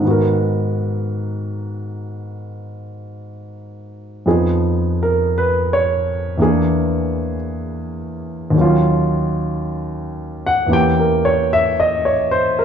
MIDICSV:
0, 0, Header, 1, 2, 480
1, 0, Start_track
1, 0, Tempo, 1058201
1, 12, Time_signature, 4, 2, 24, 8
1, 2412, Tempo, 1069519
1, 5702, End_track
2, 0, Start_track
2, 0, Title_t, "Grand piano"
2, 0, Program_c, 0, 0
2, 0, Control_c, 0, 64, 127
2, 0, Note_on_c, 0, 44, 47
2, 10, Note_on_c, 0, 51, 43
2, 17, Control_c, 0, 64, 0
2, 22, Note_on_c, 0, 59, 46
2, 34, Note_on_c, 0, 66, 47
2, 49, Note_on_c, 0, 70, 55
2, 85, Control_c, 0, 64, 127
2, 1924, Note_off_c, 0, 44, 0
2, 1929, Note_off_c, 0, 59, 0
2, 1931, Note_off_c, 0, 51, 0
2, 1932, Note_on_c, 0, 41, 47
2, 1935, Note_on_c, 0, 53, 43
2, 1936, Note_on_c, 0, 59, 42
2, 1937, Control_c, 0, 64, 0
2, 1939, Note_on_c, 0, 63, 45
2, 1939, Note_on_c, 0, 68, 54
2, 1942, Note_off_c, 0, 66, 0
2, 1950, Note_off_c, 0, 70, 0
2, 2014, Control_c, 0, 64, 127
2, 2280, Note_on_c, 0, 70, 64
2, 2423, Note_off_c, 0, 70, 0
2, 2439, Note_on_c, 0, 71, 71
2, 2582, Note_off_c, 0, 71, 0
2, 2598, Note_on_c, 0, 73, 77
2, 2887, Note_on_c, 0, 40, 52
2, 2891, Note_on_c, 0, 52, 47
2, 2894, Note_off_c, 0, 41, 0
2, 2896, Note_off_c, 0, 53, 0
2, 2896, Note_off_c, 0, 59, 0
2, 2896, Note_on_c, 0, 58, 47
2, 2898, Note_off_c, 0, 63, 0
2, 2898, Note_off_c, 0, 68, 0
2, 2901, Control_c, 0, 64, 0
2, 2901, Note_on_c, 0, 62, 45
2, 2907, Note_on_c, 0, 68, 58
2, 2985, Control_c, 0, 64, 127
2, 3321, Note_off_c, 0, 73, 0
2, 3842, Note_on_c, 0, 39, 53
2, 3853, Note_on_c, 0, 51, 49
2, 3857, Note_off_c, 0, 40, 0
2, 3859, Note_off_c, 0, 52, 0
2, 3862, Note_off_c, 0, 58, 0
2, 3864, Note_off_c, 0, 62, 0
2, 3866, Control_c, 0, 64, 0
2, 3866, Note_on_c, 0, 54, 48
2, 3867, Note_off_c, 0, 68, 0
2, 3880, Note_on_c, 0, 61, 50
2, 3891, Note_on_c, 0, 65, 62
2, 3947, Control_c, 0, 64, 127
2, 4722, Note_on_c, 0, 78, 77
2, 4805, Note_off_c, 0, 78, 0
2, 4810, Note_off_c, 0, 39, 0
2, 4812, Note_on_c, 0, 40, 48
2, 4815, Note_off_c, 0, 51, 0
2, 4820, Note_on_c, 0, 52, 46
2, 4822, Note_off_c, 0, 54, 0
2, 4824, Control_c, 0, 64, 0
2, 4825, Note_off_c, 0, 61, 0
2, 4825, Note_on_c, 0, 58, 44
2, 4831, Note_on_c, 0, 61, 43
2, 4834, Note_off_c, 0, 65, 0
2, 4836, Note_on_c, 0, 67, 52
2, 4842, Note_on_c, 0, 79, 85
2, 4899, Control_c, 0, 64, 127
2, 4960, Note_on_c, 0, 70, 54
2, 4990, Note_off_c, 0, 79, 0
2, 5074, Note_on_c, 0, 73, 76
2, 5131, Note_off_c, 0, 70, 0
2, 5182, Note_off_c, 0, 73, 0
2, 5200, Note_on_c, 0, 76, 83
2, 5283, Note_off_c, 0, 76, 0
2, 5319, Note_on_c, 0, 75, 75
2, 5434, Note_on_c, 0, 73, 71
2, 5468, Note_off_c, 0, 75, 0
2, 5552, Note_on_c, 0, 72, 83
2, 5607, Note_off_c, 0, 73, 0
2, 5659, Note_off_c, 0, 72, 0
2, 5675, Note_on_c, 0, 70, 67
2, 5702, Note_off_c, 0, 40, 0
2, 5702, Note_off_c, 0, 52, 0
2, 5702, Note_off_c, 0, 58, 0
2, 5702, Note_off_c, 0, 61, 0
2, 5702, Note_off_c, 0, 67, 0
2, 5702, Note_off_c, 0, 70, 0
2, 5702, End_track
0, 0, End_of_file